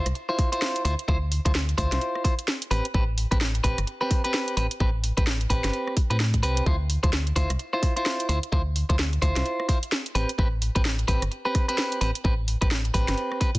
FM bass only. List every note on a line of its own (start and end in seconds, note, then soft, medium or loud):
0.06 0.13 C2 medium
0.85 0.95 D2 medium
1.08 1.40 D2 loud
1.46 1.74 D2 medium
1.78 1.89 D2 loud
1.92 1.99 C2 medium
2.71 2.82 A1 medium
2.94 3.26 A1 loud
3.32 3.60 A1 medium
3.64 3.75 A1 loud
3.78 3.85 G1 medium
4.57 4.68 A1 medium
4.80 5.12 A1 loud
5.18 5.46 A1 medium
5.50 5.61 A1 loud
5.64 5.71 G1 medium
6.11 6.45 A2 medium
6.43 6.62 C2 loud
6.66 6.98 D2 loud
7.04 7.32 D2 medium
7.36 7.47 D2 loud
7.50 7.57 C2 medium
8.29 8.40 D2 medium
8.52 8.84 D2 medium
8.90 9.18 D2 medium
9.22 9.33 D2 loud
9.36 9.43 C2 medium
10.15 10.26 A1 medium
10.39 10.70 A1 loud
10.76 11.05 A1 medium
11.08 11.19 A1 loud
11.22 11.29 G1 medium
12.01 12.12 A1 medium
12.25 12.56 A1 loud
12.62 12.91 A1 medium
12.94 13.05 A1 loud
13.08 13.15 G1 medium
13.55 13.59 A2 medium